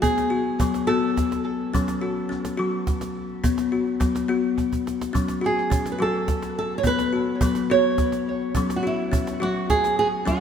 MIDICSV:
0, 0, Header, 1, 4, 480
1, 0, Start_track
1, 0, Key_signature, 3, "minor"
1, 0, Tempo, 568720
1, 25, Time_signature, 6, 3, 24, 8
1, 8779, End_track
2, 0, Start_track
2, 0, Title_t, "Nylon-string guitar"
2, 0, Program_c, 0, 24
2, 16, Note_on_c, 0, 68, 89
2, 733, Note_off_c, 0, 68, 0
2, 737, Note_on_c, 0, 69, 77
2, 1246, Note_off_c, 0, 69, 0
2, 4607, Note_on_c, 0, 68, 70
2, 4992, Note_off_c, 0, 68, 0
2, 4995, Note_on_c, 0, 71, 52
2, 5059, Note_off_c, 0, 71, 0
2, 5081, Note_on_c, 0, 69, 72
2, 5548, Note_off_c, 0, 69, 0
2, 5558, Note_on_c, 0, 69, 71
2, 5719, Note_off_c, 0, 69, 0
2, 5722, Note_on_c, 0, 73, 66
2, 5783, Note_off_c, 0, 73, 0
2, 5798, Note_on_c, 0, 71, 90
2, 6506, Note_off_c, 0, 71, 0
2, 6510, Note_on_c, 0, 73, 86
2, 7014, Note_off_c, 0, 73, 0
2, 7396, Note_on_c, 0, 66, 58
2, 7461, Note_off_c, 0, 66, 0
2, 7485, Note_on_c, 0, 64, 65
2, 7957, Note_on_c, 0, 66, 85
2, 7970, Note_off_c, 0, 64, 0
2, 8184, Note_off_c, 0, 66, 0
2, 8187, Note_on_c, 0, 68, 86
2, 8421, Note_off_c, 0, 68, 0
2, 8431, Note_on_c, 0, 68, 83
2, 8495, Note_off_c, 0, 68, 0
2, 8672, Note_on_c, 0, 66, 78
2, 8779, Note_off_c, 0, 66, 0
2, 8779, End_track
3, 0, Start_track
3, 0, Title_t, "Kalimba"
3, 0, Program_c, 1, 108
3, 17, Note_on_c, 1, 59, 78
3, 255, Note_on_c, 1, 66, 65
3, 261, Note_off_c, 1, 59, 0
3, 500, Note_off_c, 1, 66, 0
3, 504, Note_on_c, 1, 59, 67
3, 515, Note_on_c, 1, 54, 76
3, 736, Note_on_c, 1, 66, 72
3, 744, Note_off_c, 1, 59, 0
3, 749, Note_off_c, 1, 54, 0
3, 753, Note_on_c, 1, 59, 77
3, 1219, Note_off_c, 1, 66, 0
3, 1298, Note_off_c, 1, 59, 0
3, 1465, Note_on_c, 1, 61, 81
3, 1473, Note_on_c, 1, 54, 86
3, 1700, Note_on_c, 1, 66, 60
3, 1704, Note_off_c, 1, 61, 0
3, 1835, Note_off_c, 1, 54, 0
3, 1934, Note_on_c, 1, 61, 66
3, 1941, Note_off_c, 1, 66, 0
3, 2173, Note_on_c, 1, 66, 68
3, 2178, Note_off_c, 1, 61, 0
3, 2186, Note_on_c, 1, 54, 75
3, 2658, Note_off_c, 1, 66, 0
3, 2734, Note_off_c, 1, 54, 0
3, 2900, Note_on_c, 1, 59, 84
3, 3140, Note_on_c, 1, 66, 62
3, 3267, Note_off_c, 1, 59, 0
3, 3376, Note_on_c, 1, 59, 63
3, 3380, Note_on_c, 1, 54, 70
3, 3381, Note_off_c, 1, 66, 0
3, 3605, Note_off_c, 1, 59, 0
3, 3615, Note_on_c, 1, 59, 72
3, 3621, Note_off_c, 1, 54, 0
3, 3622, Note_on_c, 1, 66, 67
3, 4102, Note_off_c, 1, 66, 0
3, 4167, Note_off_c, 1, 59, 0
3, 4330, Note_on_c, 1, 61, 74
3, 4343, Note_on_c, 1, 54, 79
3, 4570, Note_on_c, 1, 66, 65
3, 4577, Note_off_c, 1, 61, 0
3, 4710, Note_off_c, 1, 54, 0
3, 4813, Note_on_c, 1, 61, 62
3, 4816, Note_off_c, 1, 66, 0
3, 5053, Note_on_c, 1, 66, 68
3, 5058, Note_off_c, 1, 61, 0
3, 5063, Note_on_c, 1, 54, 68
3, 5538, Note_off_c, 1, 66, 0
3, 5613, Note_off_c, 1, 54, 0
3, 5768, Note_on_c, 1, 59, 81
3, 6015, Note_on_c, 1, 66, 62
3, 6016, Note_off_c, 1, 59, 0
3, 6257, Note_on_c, 1, 59, 69
3, 6260, Note_off_c, 1, 66, 0
3, 6267, Note_on_c, 1, 54, 77
3, 6499, Note_on_c, 1, 66, 68
3, 6501, Note_off_c, 1, 59, 0
3, 6506, Note_off_c, 1, 54, 0
3, 6509, Note_on_c, 1, 59, 79
3, 6982, Note_off_c, 1, 66, 0
3, 7057, Note_off_c, 1, 59, 0
3, 7213, Note_on_c, 1, 61, 74
3, 7231, Note_on_c, 1, 54, 87
3, 7452, Note_on_c, 1, 66, 64
3, 7459, Note_off_c, 1, 61, 0
3, 7595, Note_off_c, 1, 54, 0
3, 7693, Note_on_c, 1, 61, 65
3, 7699, Note_off_c, 1, 66, 0
3, 7935, Note_on_c, 1, 66, 65
3, 7940, Note_off_c, 1, 61, 0
3, 7950, Note_on_c, 1, 54, 76
3, 8420, Note_off_c, 1, 66, 0
3, 8498, Note_off_c, 1, 54, 0
3, 8655, Note_on_c, 1, 61, 77
3, 8663, Note_on_c, 1, 54, 87
3, 8779, Note_off_c, 1, 54, 0
3, 8779, Note_off_c, 1, 61, 0
3, 8779, End_track
4, 0, Start_track
4, 0, Title_t, "Cajon"
4, 25, Note_on_c, 9, 36, 45
4, 110, Note_off_c, 9, 36, 0
4, 149, Note_on_c, 9, 38, 37
4, 234, Note_off_c, 9, 38, 0
4, 266, Note_on_c, 9, 38, 15
4, 350, Note_off_c, 9, 38, 0
4, 395, Note_on_c, 9, 38, 13
4, 479, Note_off_c, 9, 38, 0
4, 504, Note_on_c, 9, 36, 50
4, 588, Note_off_c, 9, 36, 0
4, 626, Note_on_c, 9, 38, 37
4, 711, Note_off_c, 9, 38, 0
4, 757, Note_on_c, 9, 38, 14
4, 841, Note_off_c, 9, 38, 0
4, 990, Note_on_c, 9, 36, 49
4, 990, Note_on_c, 9, 38, 15
4, 1075, Note_off_c, 9, 36, 0
4, 1075, Note_off_c, 9, 38, 0
4, 1115, Note_on_c, 9, 38, 36
4, 1199, Note_off_c, 9, 38, 0
4, 1361, Note_on_c, 9, 38, 14
4, 1446, Note_off_c, 9, 38, 0
4, 1472, Note_on_c, 9, 36, 43
4, 1557, Note_off_c, 9, 36, 0
4, 1586, Note_on_c, 9, 38, 36
4, 1671, Note_off_c, 9, 38, 0
4, 1706, Note_on_c, 9, 38, 14
4, 1791, Note_off_c, 9, 38, 0
4, 1832, Note_on_c, 9, 38, 13
4, 1916, Note_off_c, 9, 38, 0
4, 2065, Note_on_c, 9, 38, 40
4, 2149, Note_off_c, 9, 38, 0
4, 2187, Note_on_c, 9, 38, 16
4, 2272, Note_off_c, 9, 38, 0
4, 2423, Note_on_c, 9, 36, 49
4, 2423, Note_on_c, 9, 38, 16
4, 2507, Note_off_c, 9, 36, 0
4, 2507, Note_off_c, 9, 38, 0
4, 2541, Note_on_c, 9, 38, 37
4, 2625, Note_off_c, 9, 38, 0
4, 2780, Note_on_c, 9, 38, 17
4, 2864, Note_off_c, 9, 38, 0
4, 2903, Note_on_c, 9, 36, 48
4, 2987, Note_off_c, 9, 36, 0
4, 3020, Note_on_c, 9, 38, 38
4, 3104, Note_off_c, 9, 38, 0
4, 3142, Note_on_c, 9, 38, 16
4, 3226, Note_off_c, 9, 38, 0
4, 3254, Note_on_c, 9, 38, 16
4, 3339, Note_off_c, 9, 38, 0
4, 3382, Note_on_c, 9, 36, 54
4, 3382, Note_on_c, 9, 38, 18
4, 3466, Note_off_c, 9, 36, 0
4, 3466, Note_off_c, 9, 38, 0
4, 3508, Note_on_c, 9, 38, 39
4, 3592, Note_off_c, 9, 38, 0
4, 3864, Note_on_c, 9, 36, 28
4, 3948, Note_off_c, 9, 36, 0
4, 3988, Note_on_c, 9, 36, 32
4, 4072, Note_off_c, 9, 36, 0
4, 4111, Note_on_c, 9, 38, 37
4, 4196, Note_off_c, 9, 38, 0
4, 4232, Note_on_c, 9, 38, 43
4, 4317, Note_off_c, 9, 38, 0
4, 4347, Note_on_c, 9, 36, 43
4, 4431, Note_off_c, 9, 36, 0
4, 4460, Note_on_c, 9, 38, 38
4, 4544, Note_off_c, 9, 38, 0
4, 4583, Note_on_c, 9, 38, 15
4, 4667, Note_off_c, 9, 38, 0
4, 4705, Note_on_c, 9, 38, 15
4, 4789, Note_off_c, 9, 38, 0
4, 4823, Note_on_c, 9, 36, 52
4, 4908, Note_off_c, 9, 36, 0
4, 4943, Note_on_c, 9, 38, 36
4, 5027, Note_off_c, 9, 38, 0
4, 5067, Note_on_c, 9, 38, 15
4, 5152, Note_off_c, 9, 38, 0
4, 5301, Note_on_c, 9, 36, 50
4, 5301, Note_on_c, 9, 38, 15
4, 5385, Note_off_c, 9, 36, 0
4, 5385, Note_off_c, 9, 38, 0
4, 5422, Note_on_c, 9, 38, 36
4, 5507, Note_off_c, 9, 38, 0
4, 5660, Note_on_c, 9, 38, 16
4, 5744, Note_off_c, 9, 38, 0
4, 5772, Note_on_c, 9, 36, 44
4, 5857, Note_off_c, 9, 36, 0
4, 5896, Note_on_c, 9, 38, 37
4, 5981, Note_off_c, 9, 38, 0
4, 6015, Note_on_c, 9, 38, 15
4, 6100, Note_off_c, 9, 38, 0
4, 6142, Note_on_c, 9, 38, 15
4, 6227, Note_off_c, 9, 38, 0
4, 6253, Note_on_c, 9, 36, 55
4, 6337, Note_off_c, 9, 36, 0
4, 6372, Note_on_c, 9, 38, 36
4, 6457, Note_off_c, 9, 38, 0
4, 6496, Note_on_c, 9, 38, 14
4, 6581, Note_off_c, 9, 38, 0
4, 6735, Note_on_c, 9, 36, 50
4, 6735, Note_on_c, 9, 38, 16
4, 6820, Note_off_c, 9, 36, 0
4, 6820, Note_off_c, 9, 38, 0
4, 6856, Note_on_c, 9, 38, 37
4, 6940, Note_off_c, 9, 38, 0
4, 7095, Note_on_c, 9, 38, 15
4, 7180, Note_off_c, 9, 38, 0
4, 7214, Note_on_c, 9, 36, 44
4, 7298, Note_off_c, 9, 36, 0
4, 7342, Note_on_c, 9, 38, 40
4, 7426, Note_off_c, 9, 38, 0
4, 7463, Note_on_c, 9, 38, 16
4, 7548, Note_off_c, 9, 38, 0
4, 7592, Note_on_c, 9, 38, 15
4, 7676, Note_off_c, 9, 38, 0
4, 7704, Note_on_c, 9, 36, 51
4, 7789, Note_off_c, 9, 36, 0
4, 7826, Note_on_c, 9, 38, 38
4, 7910, Note_off_c, 9, 38, 0
4, 7949, Note_on_c, 9, 38, 15
4, 8034, Note_off_c, 9, 38, 0
4, 8185, Note_on_c, 9, 36, 47
4, 8185, Note_on_c, 9, 38, 15
4, 8269, Note_off_c, 9, 36, 0
4, 8269, Note_off_c, 9, 38, 0
4, 8306, Note_on_c, 9, 38, 36
4, 8390, Note_off_c, 9, 38, 0
4, 8557, Note_on_c, 9, 38, 16
4, 8641, Note_off_c, 9, 38, 0
4, 8672, Note_on_c, 9, 36, 41
4, 8672, Note_on_c, 9, 38, 14
4, 8756, Note_off_c, 9, 36, 0
4, 8756, Note_off_c, 9, 38, 0
4, 8779, End_track
0, 0, End_of_file